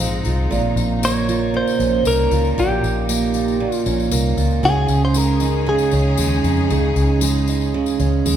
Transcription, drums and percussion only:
0.25 tambourine
0.52 tambourine
0.77 tambourine
1.03 tambourine
1.29 tambourine
1.67 tambourine
1.80 tambourine
2.05 tambourine
2.31 tambourine
2.45 tambourine
2.59 tambourine
2.84 tambourine
3.09 tambourine
3.34 tambourine
3.48 tambourine
3.72 tambourine
3.86 tambourine
4.00 tambourine
4.11 tambourine
4.38 tambourine
4.51 tambourine
4.64 tambourine
4.88 tambourine
5.14 tambourine
5.40 tambourine
5.78 tambourine
5.91 tambourine
6.17 tambourine
6.44 tambourine
6.57 tambourine
6.70 tambourine
6.96 tambourine
7.21 tambourine
7.47 tambourine
7.61 tambourine
7.86 tambourine
8.00 tambourine
8.26 tambourine

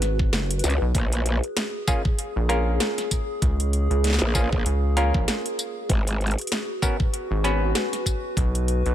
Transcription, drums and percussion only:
0.02 snare, closed hi-hat
0.19 kick
0.33 snare
0.51 closed hi-hat
0.59 closed hi-hat
0.64 closed hi-hat, tambourine
0.70 closed hi-hat
0.95 kick, closed hi-hat
1.12 closed hi-hat
1.26 closed hi-hat
1.44 closed hi-hat
1.57 snare, closed hi-hat
1.88 kick, tambourine
2.05 kick
2.19 closed hi-hat
2.50 snare, closed hi-hat
2.80 snare, closed hi-hat
2.98 snare, closed hi-hat
3.11 kick, closed hi-hat, tambourine
3.42 kick, closed hi-hat
3.60 closed hi-hat
3.73 closed hi-hat
3.91 closed hi-hat
4.04 snare, closed hi-hat
4.07 snare
4.10 snare
4.13 snare
4.19 snare
4.35 kick, tambourine
4.53 kick
4.66 closed hi-hat
4.97 snare, closed hi-hat
5.14 kick
5.28 snare, closed hi-hat
5.46 closed hi-hat
5.59 closed hi-hat, tambourine
5.89 kick, closed hi-hat
6.07 closed hi-hat
6.21 closed hi-hat
6.27 closed hi-hat
6.31 closed hi-hat
6.38 closed hi-hat
6.41 closed hi-hat
6.47 closed hi-hat
6.52 snare, closed hi-hat
6.82 kick, tambourine
7.00 kick
7.14 closed hi-hat
7.45 snare, closed hi-hat
7.75 snare, closed hi-hat
7.93 snare, closed hi-hat
8.06 kick, closed hi-hat, tambourine
8.37 kick, closed hi-hat
8.55 closed hi-hat
8.68 closed hi-hat
8.86 closed hi-hat

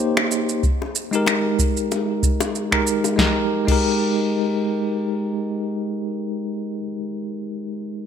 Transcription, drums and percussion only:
0.00 shaker
0.17 finger snap, high bongo
0.31 shaker
0.49 shaker
0.63 kick, shaker
0.82 high bongo
0.95 shaker
1.13 shaker
1.26 finger snap, high bongo, shaker
1.59 kick, shaker
1.77 shaker
1.92 high bongo, shaker
2.23 kick, shaker
2.40 high bongo, shaker
2.55 shaker
2.72 finger snap, kick
2.87 shaker
3.04 high bongo, shaker
3.18 kick, snare
3.68 kick, crash

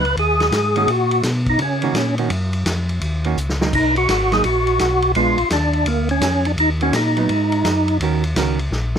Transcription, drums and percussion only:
0.05 ride
0.17 ride
0.40 snare, ride
0.52 snare, hi-hat pedal, ride
0.76 ride
0.88 ride
1.11 ride
1.23 snare, hi-hat pedal, ride
1.46 kick, ride
1.59 ride
1.82 ride
1.95 snare, hi-hat pedal, ride
2.18 ride
2.30 ride
2.53 ride
2.66 snare, hi-hat pedal, ride
2.89 ride
3.01 ride
3.24 ride
3.37 hi-hat pedal
3.49 snare
3.61 snare
3.73 kick, crash
3.96 ride
4.09 snare, hi-hat pedal, ride
4.32 snare, ride
4.44 ride
4.67 ride
4.79 snare, hi-hat pedal, ride
5.02 ride
5.15 ride
5.38 ride
5.50 snare, hi-hat pedal, ride
5.73 ride
5.86 ride
6.09 ride
6.21 snare, hi-hat pedal, ride
6.45 ride
6.58 ride
6.81 ride
6.93 snare, hi-hat pedal, ride
7.17 ride
7.29 ride
7.52 ride
7.65 snare, hi-hat pedal, ride
7.88 ride
8.01 ride
8.24 ride
8.36 snare, hi-hat pedal, ride
8.59 ride
8.72 snare
8.96 snare

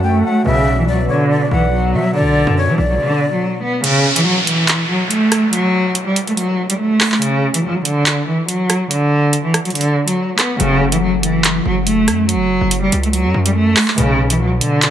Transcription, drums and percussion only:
3.84 closed hi-hat
4.16 closed hi-hat
4.47 closed hi-hat
4.68 clap, closed hi-hat
5.11 closed hi-hat
5.32 cross-stick, closed hi-hat
5.53 closed hi-hat
5.95 closed hi-hat
6.16 closed hi-hat
6.27 closed hi-hat
6.37 closed hi-hat
6.70 closed hi-hat
7.01 cross-stick, clap, open hi-hat
7.12 clap
7.22 closed hi-hat
7.54 closed hi-hat
7.85 closed hi-hat
8.06 clap, closed hi-hat
8.48 closed hi-hat
8.70 cross-stick, closed hi-hat
8.91 closed hi-hat
9.33 closed hi-hat
9.54 cross-stick, closed hi-hat
9.65 closed hi-hat
9.70 closed hi-hat
9.75 closed hi-hat
9.81 closed hi-hat
10.08 closed hi-hat
10.39 cross-stick, clap, closed hi-hat
10.60 closed hi-hat
10.92 closed hi-hat
11.23 closed hi-hat
11.44 clap, closed hi-hat
11.87 closed hi-hat
12.08 cross-stick, closed hi-hat
12.29 closed hi-hat
12.71 closed hi-hat
12.92 closed hi-hat
13.03 closed hi-hat
13.13 closed hi-hat
13.46 closed hi-hat
13.77 cross-stick, clap, open hi-hat
13.88 clap
13.98 closed hi-hat
14.30 closed hi-hat
14.61 closed hi-hat
14.82 clap, closed hi-hat

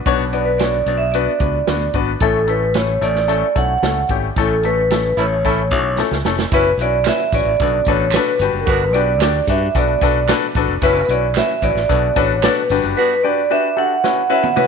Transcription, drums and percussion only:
0.06 kick, closed hi-hat
0.33 closed hi-hat
0.59 snare, closed hi-hat
0.86 closed hi-hat
1.14 closed hi-hat
1.40 kick, closed hi-hat
1.67 snare, closed hi-hat
1.94 kick, closed hi-hat
2.20 kick, closed hi-hat
2.47 closed hi-hat
2.74 snare, closed hi-hat
3.02 closed hi-hat
3.15 snare
3.29 closed hi-hat
3.56 kick, closed hi-hat
3.83 snare, closed hi-hat
4.09 kick, closed hi-hat
4.36 kick, closed hi-hat
4.63 closed hi-hat
4.91 snare, closed hi-hat
5.18 closed hi-hat
5.45 kick, closed hi-hat
5.71 kick, closed hi-hat
5.98 snare
6.12 snare
6.25 snare
6.39 snare
6.52 kick, closed hi-hat
6.79 closed hi-hat, tambourine
7.05 snare, clap, closed hi-hat, tambourine
7.32 kick, closed hi-hat, tambourine
7.60 kick, closed hi-hat, tambourine
7.85 kick, closed hi-hat, tambourine
8.11 snare, clap, closed hi-hat, tambourine
8.39 closed hi-hat, tambourine
8.67 kick, closed hi-hat, tambourine
8.94 closed hi-hat, tambourine
9.21 snare, clap, closed hi-hat, tambourine
9.47 kick, closed hi-hat, tambourine
9.75 kick, closed hi-hat, tambourine
10.01 kick, closed hi-hat, tambourine
10.29 snare, clap, closed hi-hat, tambourine
10.55 kick, closed hi-hat, tambourine
10.82 kick, closed hi-hat
11.09 closed hi-hat, tambourine
11.35 snare, clap, closed hi-hat, tambourine
11.62 kick, closed hi-hat, tambourine
11.77 snare
11.90 kick, closed hi-hat, tambourine
12.16 kick, closed hi-hat, tambourine
12.43 snare, clap, closed hi-hat, tambourine
12.69 open hi-hat, tambourine
14.04 snare
14.43 high tom
14.57 mid tom

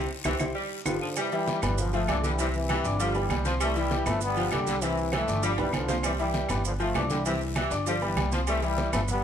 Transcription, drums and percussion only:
0.24 high conga, high timbale, long guiro, claves, maracas
0.40 high conga, high timbale, long guiro, claves, maracas
0.86 high conga, high timbale, long guiro, claves, maracas
1.16 high conga, low agogo, long guiro, claves, maracas
1.32 high conga, low agogo, maracas
1.47 high conga, low timbale, short guiro, maracas
1.62 high conga, low conga, low agogo, short guiro, claves, maracas
1.78 high conga, low conga, long guiro, maracas
1.93 high conga, low agogo, maracas
2.08 high conga, low timbale, low agogo, short guiro, claves, maracas
2.23 high conga, short guiro, maracas
2.39 high conga, low agogo, long guiro, maracas
2.54 high conga, maracas
2.69 high conga, low timbale, low agogo, short guiro, claves, maracas
2.84 high conga, short guiro, maracas
3.00 high conga, low agogo, long guiro, maracas
3.15 high conga, low agogo, maracas
3.30 high conga, low timbale, low agogo, short guiro, claves, maracas
3.45 high conga, short guiro, maracas
3.60 low agogo, long guiro, claves, maracas
3.76 high conga, low agogo, maracas
3.91 high conga, low timbale, short guiro, maracas
4.06 high conga, low conga, low agogo, short guiro, claves, maracas
4.21 high conga, long guiro, maracas
4.36 high conga, low agogo, maracas
4.52 high conga, low timbale, low agogo, short guiro, claves, maracas
4.67 high conga, short guiro, maracas
4.82 high conga, low agogo, long guiro, maracas
4.98 high conga, maracas
5.12 high conga, low timbale, low agogo, short guiro, claves, maracas
5.28 short guiro, maracas
5.43 high conga, low agogo, long guiro, maracas
5.58 high conga, high timbale, low agogo, maracas
5.73 high conga, high timbale, low agogo, short guiro, claves, maracas
5.88 high conga, low timbale, short guiro, maracas
6.03 high conga, low agogo, long guiro, claves, maracas
6.19 high conga, low agogo, maracas
6.34 high conga, low timbale, short guiro, maracas
6.49 high conga, low conga, low agogo, short guiro, claves, maracas
6.64 high conga, long guiro, maracas
6.80 high conga, low agogo, maracas
6.94 low timbale, low agogo, short guiro, claves, maracas
7.10 high conga, short guiro, maracas
7.25 low agogo, long guiro, maracas
7.41 high conga, maracas
7.56 high conga, low timbale, low agogo, short guiro, claves, maracas
7.71 high conga, short guiro, maracas
7.86 high conga, low agogo, long guiro, maracas
8.02 high conga, low agogo, maracas
8.17 high conga, low timbale, low agogo, short guiro, claves, maracas
8.32 high conga, short guiro, maracas
8.47 high conga, low agogo, long guiro, claves, maracas
8.63 high conga, low agogo, maracas
8.78 high conga, low timbale, short guiro, maracas
8.93 high conga, low conga, low agogo, short guiro, claves, maracas
9.08 high conga, low conga, long guiro, maracas

